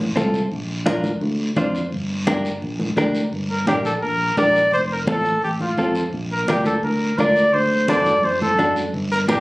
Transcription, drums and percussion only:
0.17 high conga medium
0.17 short guiro medium
0.34 short guiro medium
0.52 long guiro medium
0.69 high conga soft
0.86 high conga medium
0.86 short guiro medium
1.04 high conga medium
1.04 short guiro medium
1.21 high conga soft
1.21 long guiro medium
1.56 high conga medium
1.56 short guiro medium
1.75 short guiro medium
1.92 long guiro medium
2.09 high conga soft
2.27 high conga medium
2.27 short guiro medium
2.45 short guiro medium
2.62 high conga soft
2.62 long guiro medium
2.80 high conga medium
2.97 high conga medium
2.97 short guiro medium
3.15 short guiro medium
3.33 long guiro medium
3.50 high conga soft
3.67 high conga medium
3.67 short guiro medium
3.85 short guiro medium
4.02 high conga soft
4.02 long guiro medium
4.37 high conga medium
4.37 short guiro medium
4.55 short guiro medium
4.72 long guiro medium
4.90 high conga soft
5.07 high conga medium
5.07 short guiro medium
5.25 short guiro medium
5.43 high conga soft
5.43 long guiro medium
5.60 high conga medium
5.78 high conga medium
5.78 short guiro medium
5.95 short guiro medium
6.13 long guiro medium
6.31 high conga soft
6.48 high conga medium
6.48 short guiro medium
6.65 high conga medium
6.65 short guiro medium
6.83 high conga soft
6.83 long guiro medium
7.18 high conga medium
7.18 short guiro medium
7.36 short guiro medium
7.54 long guiro medium
7.71 high conga soft
7.88 high conga medium
7.88 short guiro medium
8.06 high conga medium
8.06 short guiro medium
8.23 high conga soft
8.23 long guiro medium
8.42 high conga medium
8.59 high conga medium
8.59 short guiro medium
8.76 short guiro medium
8.94 long guiro medium
9.11 high conga soft
9.29 high conga medium
9.29 short guiro medium

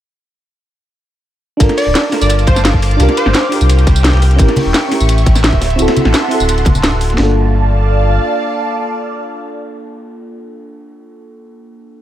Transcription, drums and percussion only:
1.60 kick loud
1.60 closed hi-hat medium
1.60 ride medium
1.60 tambourine soft
1.69 snare soft
1.69 closed hi-hat soft
1.77 closed hi-hat medium
1.77 open hi-hat medium
1.77 tambourine soft
1.95 snare loud
1.95 closed hi-hat loud
1.95 ride medium
1.95 tambourine soft
2.12 snare soft
2.12 open hi-hat medium
2.12 ride medium
2.21 tambourine medium
2.29 closed hi-hat loud
2.29 ride medium
2.29 tambourine soft
2.39 closed hi-hat soft
2.39 tambourine soft
2.47 kick loud
2.47 closed hi-hat medium
2.47 ride medium
2.47 tambourine soft
2.55 snare soft
2.55 tambourine medium
2.65 snare loud
2.65 closed hi-hat loud
2.65 ride medium
2.65 tambourine medium
2.74 kick medium
2.74 snare medium
2.82 open hi-hat medium
2.82 ride medium
2.82 tambourine soft
2.91 closed hi-hat soft
3.00 closed hi-hat medium
3.00 ride medium
3.00 tambourine soft
3.09 snare soft
3.09 closed hi-hat soft
3.17 closed hi-hat medium
3.17 ride medium
3.17 tambourine soft
3.26 snare medium
3.34 snare loud
3.34 closed hi-hat loud
3.34 ride medium
3.34 tambourine soft
3.44 snare soft
3.52 open hi-hat medium
3.52 ride medium
3.61 tambourine medium
3.69 closed hi-hat medium
3.69 ride medium
3.69 tambourine soft
3.79 closed hi-hat soft
3.79 tambourine soft
3.87 kick loud
3.87 closed hi-hat medium
3.87 ride medium
3.87 tambourine soft
3.96 tambourine medium
4.04 snare loud
4.04 closed hi-hat loud
4.04 ride medium
4.04 tambourine soft
4.09 snare medium
4.09 ride medium
4.13 snare medium
4.13 ride medium
4.17 snare medium
4.17 ride medium
4.22 open hi-hat medium
4.22 ride medium
4.22 tambourine soft
4.30 snare soft
4.30 closed hi-hat soft
4.38 kick loud
4.38 closed hi-hat medium
4.38 ride medium
4.38 tambourine soft
4.48 snare soft
4.48 closed hi-hat soft
4.56 closed hi-hat medium
4.56 open hi-hat medium
4.56 tambourine soft
4.56 high conga medium
4.74 snare loud
4.74 closed hi-hat medium
4.74 ride medium
4.74 tambourine soft
4.92 snare soft
4.92 open hi-hat medium
4.92 ride medium
5.00 tambourine medium
5.09 closed hi-hat medium
5.09 ride medium
5.09 tambourine soft
5.18 closed hi-hat soft
5.18 tambourine soft
5.26 kick loud
5.26 closed hi-hat medium
5.26 ride medium
5.26 tambourine soft
5.35 snare medium
5.35 snare soft
5.35 tambourine medium
5.44 snare loud
5.44 closed hi-hat medium
5.44 ride medium
5.44 tambourine soft
5.52 kick medium
5.52 snare medium
5.61 snare loud
5.61 open hi-hat medium
5.61 ride medium
5.61 tambourine soft
5.70 closed hi-hat soft
5.78 closed hi-hat medium
5.78 ride medium
5.78 tambourine soft
5.88 snare loud
5.88 snare soft
5.88 closed hi-hat soft
5.88 ride medium
5.97 closed hi-hat medium
5.97 tambourine soft
5.97 high conga medium
6.05 snare medium
6.05 ride medium
6.14 snare loud
6.14 closed hi-hat medium
6.14 ride medium
6.14 tambourine soft
6.23 snare soft
6.31 open hi-hat medium
6.31 ride medium
6.40 tambourine medium
6.48 closed hi-hat medium
6.48 ride medium
6.48 tambourine soft
6.58 closed hi-hat soft
6.58 tambourine soft
6.65 kick loud
6.65 closed hi-hat medium
6.65 ride medium
6.65 tambourine soft
6.65 high conga loud
6.75 tambourine medium
6.75 high conga medium
6.83 snare loud
6.83 closed hi-hat medium
6.83 ride medium
6.83 tambourine soft
6.93 snare soft
7.01 open hi-hat medium
7.01 ride medium
7.01 tambourine soft
7.10 snare soft
7.10 closed hi-hat soft
7.18 snare loud

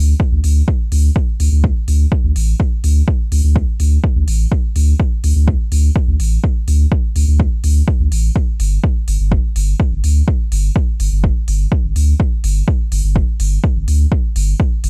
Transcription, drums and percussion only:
0.20 kick loud
0.44 open hi-hat medium
0.68 kick loud
0.92 open hi-hat medium
1.16 kick loud
1.40 open hi-hat medium
1.64 kick loud
1.88 open hi-hat medium
2.12 kick loud
2.36 open hi-hat medium
2.60 kick loud
2.84 open hi-hat medium
3.08 kick loud
3.32 open hi-hat medium
3.56 kick loud
3.80 open hi-hat medium
4.04 kick loud
4.28 open hi-hat medium
4.52 kick loud
4.76 open hi-hat medium
5.00 kick loud
5.24 open hi-hat medium
5.48 kick loud
5.72 open hi-hat medium
5.96 kick loud
6.20 open hi-hat medium
6.44 kick loud
6.68 open hi-hat medium
6.92 kick loud
7.16 open hi-hat medium
7.40 kick loud
7.64 open hi-hat medium
7.88 kick loud
8.12 open hi-hat medium
8.36 kick loud
8.60 open hi-hat medium
8.84 kick loud
9.08 open hi-hat medium
9.32 kick loud
9.56 open hi-hat medium
9.80 kick loud
10.04 open hi-hat medium
10.28 kick loud
10.52 open hi-hat medium
10.76 kick loud
11.00 open hi-hat medium
11.24 kick loud
11.48 open hi-hat medium
11.72 kick loud
11.96 open hi-hat medium
12.20 kick loud
12.44 open hi-hat medium
12.68 kick loud
12.92 open hi-hat medium
13.16 kick loud
13.40 open hi-hat medium
13.64 kick loud
13.88 open hi-hat medium
14.12 kick loud
14.36 open hi-hat medium
14.60 kick loud
14.84 open hi-hat medium

